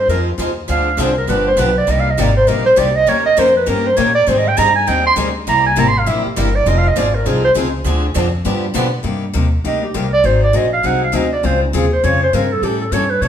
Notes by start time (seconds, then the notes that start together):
0.08 F2 F3 G#3 C4 D#4 F4 G#4 A#4 C5
0.38 D#2 F3 G#3 C4 D#4 F4 G#4 C5
0.68 D2 D3 F3 C4 D4 G#4 F5
0.97 C2 D3 F3 C4 D4 G#4 C5
1.18 A#4
1.28 G1 D3 F3 B3 D4 G4 B4
1.48 C5
1.56 B1 D3 F3 B3 D4 G4 B4
1.78 D5
1.88 C2 C3 G3 A#3 D#4 G4 D#5
2.00 F5
2.10 D#5
2.18 G#1 C3 G3 A#3 D#4 G4 D5
2.37 C5
2.48 A#1 C3 G3 A#3 D#4 G4 A#4
2.66 C5
2.76 C2 C3 G3 A#3 D#4 G4 D5
2.95 D#5
3.07 D#2 D#3 A#3 C#4 G4 A#4 C#5
3.26 D#5
3.37 F2 D#3 A#3 C#4 G4 A#4 C5
3.57 B4
3.66 G2 D#3 A#3 C#4 G4 A#4
3.87 C5
3.97 A#2 D#3 A#3 C#4 G4 A#4 C#5
4.15 D5
4.27 G#2 D#3 G3 C4 D#4 G#4 C5
4.38 D#5
4.48 G5
4.57 G2 D#3 G3 C4 D#4 G#4 A#5
4.75 G#5
4.87 D#2 D#3 G3 C4 D#4 G#4 G5
5.07 C6
5.16 D2 D#3 G3 C4 D#4 G#4
5.47 C2 C3 G3 A#3 E4 G4 A#5
5.66 G#5
5.76 G#1 C3 G3 A#3 E4 G4 A#5
5.88 C6
5.98 F5
6.07 A#1 C3 G3 A#3 E4 G4 E5
6.25 G4, muted upright bass stroke
6.36 G1 C3 G3 A#3 E4 G4 A#4
6.55 D5
6.66 F1 F3 G#3 C4 D#4 F4 G#4 C5 D#5
6.78 F5
6.88 D#5
6.96 G#1 F3 G#3 C4 D#4 F4 G#4 C5 D5
7.15 A#4
7.26 C2 F3 G#3 C4 D#4 F4 G#4 C5
7.44 C5
7.55 C#2 F3 G#3 C4 D#4 F4 G#4 C5
7.84 D2 D3 F3 C4 D4 G#4
8.15 F2 D3 F3 C4 D4 G#4
8.45 G2 D3 F3 B3 D4 G4
8.74 B2 D3 F3 B3 D4 G4
9.03 G2 C3 G3 A#3 D#4 G4
9.33 D#2 C3 G3 A#3 D#4 G4
9.64 D2 C3 G3 A#3 D#4 G4 D#5
9.84 G4
9.94 C2 C3 G3 A#3 D#4 G4 A#4
10.13 D5
10.24 G#1 D#3 F#3 C4 D#4 G#4 C5
10.44 D5
10.53 A#1 D#3 F#3 C4 D#4 G#4 D#5
10.73 F5
10.83 C2 D#3 F#3 C4 D#4 G#4 F#5
11.04 F5
11.12 D2 D#3 F#3 C4 D#4 G#4 D#5
11.33 D5
11.43 C#2 C#3 G#3 C4 F4 G#4 C5
11.63 D#4
11.73 D#2 C#3 G#3 C4 F4 G#4
11.93 C5
12.04 F2 C#3 G#3 C4 F4 G#4 C#5
12.23 C5
12.33 G2 C#3 G#3 C4 F4 G#4 A#4
12.52 A4
12.62 A2 E3 G3 C#4 E4 G4 A4
12.81 A4
12.92 G2 E3 G3 C#4 E4 A4 C#5
13.11 B4
13.21 B2 E3 G3 C#4 E4 A4 C#5